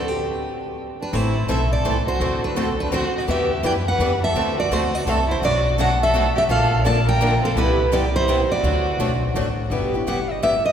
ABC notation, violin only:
X:1
M:3/4
L:1/8
Q:"Swing" 1/4=168
K:G
V:1 name="Violin"
z4 z D | E2 A A2 F- | F D C D F F | G2 B B2 A- |
A F F F A E | F2 A A2 G | A2 d _B2 C | E2 G E2 F- |
F4 z2 | z6 |]